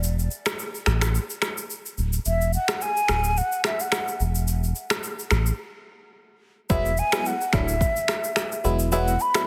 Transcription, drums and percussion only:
0.03 shaker medium
0.19 shaker soft
0.31 shaker medium
0.46 finger snap medium
0.46 cross-stick loud
0.46 shaker medium
0.59 shaker medium
0.75 shaker soft
0.86 finger snap medium
0.86 cross-stick medium
0.86 shaker medium
1.01 finger snap medium
1.01 cross-stick medium
1.01 shaker medium
1.15 shaker medium
1.30 shaker medium
1.42 finger snap medium
1.42 cross-stick medium
1.42 shaker medium
1.58 shaker medium
1.70 shaker medium
1.86 shaker soft
1.98 shaker soft
2.13 shaker medium
2.26 shaker medium
2.41 shaker medium
2.53 shaker medium
2.68 finger snap medium
2.68 cross-stick loud
2.68 shaker medium
2.81 shaker medium
2.97 shaker soft
3.08 finger snap medium
3.08 cross-stick loud
3.08 shaker medium
3.24 shaker medium
3.37 shaker medium
3.52 shaker medium
3.64 finger snap medium
3.64 cross-stick medium
3.64 shaker medium
3.80 shaker medium
3.92 finger snap medium
3.92 cross-stick loud
3.92 shaker medium
4.08 shaker soft
4.20 shaker soft
4.35 shaker medium
4.48 shaker medium
4.64 shaker soft
4.75 shaker medium
4.90 finger snap medium
4.90 cross-stick loud
4.90 shaker loud
5.04 shaker medium
5.19 shaker soft
5.31 finger snap medium
5.31 cross-stick loud
5.31 shaker medium
5.46 shaker medium
6.70 kick loud
6.70 shaker medium
6.86 shaker soft
6.97 shaker medium
7.12 finger snap medium
7.12 cross-stick loud
7.12 shaker medium
7.26 shaker medium
7.41 shaker medium
7.53 finger snap medium
7.53 kick loud
7.53 cross-stick medium
7.53 shaker medium
7.68 shaker medium
7.81 kick medium
7.81 shaker medium
7.96 shaker medium
8.08 finger snap medium
8.08 cross-stick medium
8.08 shaker medium
8.24 shaker medium
8.36 finger snap medium
8.36 cross-stick medium
8.36 shaker medium
8.52 shaker soft
8.64 shaker soft
8.79 shaker medium
8.92 shaker medium
9.08 shaker soft
9.20 shaker medium
9.34 finger snap medium
9.34 cross-stick loud
9.34 shaker medium

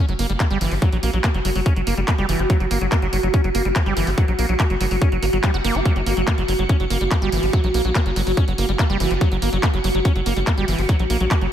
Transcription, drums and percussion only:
0.09 closed hi-hat soft
0.19 open hi-hat loud
0.30 closed hi-hat soft
0.40 kick loud
0.40 clap loud
0.40 closed hi-hat medium
0.51 closed hi-hat soft
0.61 open hi-hat loud
0.71 open hi-hat medium
0.82 kick loud
0.82 closed hi-hat medium
0.92 closed hi-hat soft
1.03 open hi-hat loud
1.13 closed hi-hat soft
1.24 kick loud
1.24 clap loud
1.24 closed hi-hat medium
1.34 closed hi-hat soft
1.45 open hi-hat loud
1.55 open hi-hat medium
1.66 kick loud
1.66 closed hi-hat medium
1.76 closed hi-hat soft
1.87 open hi-hat loud
1.97 closed hi-hat soft
2.08 kick loud
2.08 clap loud
2.08 closed hi-hat medium
2.18 closed hi-hat soft
2.29 open hi-hat loud
2.39 closed hi-hat soft
2.50 kick loud
2.50 closed hi-hat medium
2.60 closed hi-hat soft
2.71 open hi-hat loud
2.92 kick loud
2.92 clap loud
2.92 closed hi-hat medium
3.02 closed hi-hat soft
3.13 open hi-hat loud
3.23 closed hi-hat soft
3.34 kick loud
3.34 closed hi-hat medium
3.44 closed hi-hat soft
3.55 open hi-hat loud
3.65 closed hi-hat soft
3.76 kick loud
3.76 clap loud
3.76 closed hi-hat medium
3.86 closed hi-hat soft
3.97 open hi-hat loud
4.07 open hi-hat medium
4.18 kick loud
4.18 closed hi-hat medium
4.28 closed hi-hat soft
4.39 open hi-hat loud
4.49 closed hi-hat soft
4.60 kick loud
4.60 clap loud
4.60 closed hi-hat medium
4.70 closed hi-hat soft
4.81 open hi-hat loud
4.91 open hi-hat medium
5.02 kick loud
5.02 closed hi-hat medium
5.12 closed hi-hat soft
5.23 open hi-hat loud
5.33 closed hi-hat soft
5.44 kick loud
5.44 clap loud
5.44 closed hi-hat medium
5.54 closed hi-hat soft
5.65 open hi-hat loud
5.75 closed hi-hat soft
5.85 kick loud
5.85 closed hi-hat medium
5.96 closed hi-hat soft
6.06 open hi-hat loud
6.17 closed hi-hat soft
6.27 kick loud
6.27 clap loud
6.27 closed hi-hat medium
6.38 closed hi-hat soft
6.48 open hi-hat loud
6.59 closed hi-hat soft
6.69 kick loud
6.69 closed hi-hat medium
6.80 closed hi-hat soft
6.90 open hi-hat loud
7.01 closed hi-hat soft
7.11 kick loud
7.11 clap loud
7.11 closed hi-hat medium
7.22 closed hi-hat soft
7.32 open hi-hat loud
7.43 open hi-hat medium
7.53 kick loud
7.53 closed hi-hat medium
7.64 closed hi-hat soft
7.74 open hi-hat loud
7.85 closed hi-hat soft
7.95 kick loud
7.95 clap loud
7.95 closed hi-hat medium
8.06 closed hi-hat soft
8.16 open hi-hat loud
8.27 open hi-hat medium
8.37 kick loud
8.37 closed hi-hat medium
8.48 closed hi-hat soft
8.58 open hi-hat loud
8.69 closed hi-hat soft
8.79 kick loud
8.79 clap loud
8.79 closed hi-hat medium
8.90 closed hi-hat soft
9.00 open hi-hat loud
9.11 closed hi-hat soft
9.21 kick loud
9.21 closed hi-hat medium
9.32 closed hi-hat soft
9.42 open hi-hat loud
9.53 closed hi-hat soft
9.63 kick loud
9.63 clap loud
9.63 closed hi-hat medium
9.74 closed hi-hat soft
9.84 open hi-hat loud
9.95 closed hi-hat soft
10.05 kick loud
10.05 closed hi-hat medium
10.16 closed hi-hat soft
10.26 open hi-hat loud
10.37 closed hi-hat soft
10.47 kick loud
10.47 clap loud
10.47 closed hi-hat medium
10.58 closed hi-hat soft
10.68 open hi-hat loud
10.79 open hi-hat medium
10.89 kick loud
10.89 closed hi-hat medium
10.99 closed hi-hat soft
11.10 open hi-hat loud
11.20 closed hi-hat soft
11.31 kick loud
11.31 clap loud
11.31 closed hi-hat medium
11.41 closed hi-hat soft

